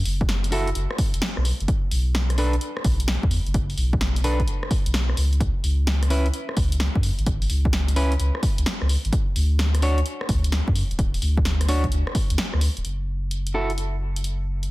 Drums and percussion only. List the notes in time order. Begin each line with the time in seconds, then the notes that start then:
0.05 open hi-hat
0.21 kick
0.29 snare, closed hi-hat
0.44 closed hi-hat
0.52 open hi-hat
0.67 closed hi-hat
0.75 closed hi-hat
0.91 cross-stick
0.98 kick, open hi-hat
1.14 closed hi-hat
1.22 snare, closed hi-hat
1.37 cross-stick
1.45 open hi-hat
1.60 closed hi-hat
1.68 kick, closed hi-hat
1.91 open hi-hat
2.15 snare, closed hi-hat
2.30 cross-stick, closed hi-hat
2.38 open hi-hat
2.53 closed hi-hat
2.61 closed hi-hat
2.77 cross-stick
2.84 kick, open hi-hat
3.00 closed hi-hat
3.08 snare, closed hi-hat
3.23 kick
3.31 open hi-hat
3.46 closed hi-hat
3.54 kick, closed hi-hat
3.70 open hi-hat
3.78 open hi-hat
3.93 kick
4.01 snare, closed hi-hat
4.16 closed hi-hat
4.24 open hi-hat
4.40 kick, closed hi-hat
4.48 closed hi-hat
4.63 cross-stick
4.71 kick, open hi-hat
4.86 closed hi-hat
4.94 snare, closed hi-hat
5.09 cross-stick
5.17 open hi-hat
5.33 closed hi-hat
5.40 kick, closed hi-hat
5.64 open hi-hat
5.87 snare, closed hi-hat
6.03 cross-stick, closed hi-hat
6.10 open hi-hat
6.26 closed hi-hat
6.34 closed hi-hat
6.49 cross-stick
6.57 kick, open hi-hat
6.72 closed hi-hat
6.80 snare, closed hi-hat
6.95 kick
7.03 open hi-hat
7.19 closed hi-hat
7.26 kick, closed hi-hat
7.42 open hi-hat
7.50 open hi-hat
7.65 kick
7.73 snare, closed hi-hat
7.88 closed hi-hat
7.96 open hi-hat
8.12 closed hi-hat
8.20 closed hi-hat
8.35 cross-stick
8.43 kick, open hi-hat
8.58 closed hi-hat
8.66 snare, closed hi-hat
8.82 cross-stick
8.89 open hi-hat
9.05 closed hi-hat
9.13 kick, closed hi-hat
9.36 open hi-hat
9.59 snare, closed hi-hat
9.75 cross-stick, closed hi-hat
9.82 open hi-hat
9.98 closed hi-hat
10.06 closed hi-hat
10.21 cross-stick
10.29 kick, open hi-hat
10.44 closed hi-hat
10.52 snare, closed hi-hat
10.68 kick
10.76 open hi-hat
10.91 closed hi-hat
10.99 kick, closed hi-hat
11.14 open hi-hat
11.22 open hi-hat
11.37 kick
11.45 snare, closed hi-hat
11.61 cross-stick, closed hi-hat
11.69 open hi-hat
11.84 kick, closed hi-hat
11.92 closed hi-hat
12.07 cross-stick
12.15 kick, open hi-hat
12.30 closed hi-hat
12.38 snare, closed hi-hat
12.54 cross-stick
12.61 open hi-hat
12.77 closed hi-hat
12.85 closed hi-hat
13.31 closed hi-hat
13.47 closed hi-hat
13.70 closed hi-hat
13.78 closed hi-hat
14.16 closed hi-hat
14.24 closed hi-hat
14.63 closed hi-hat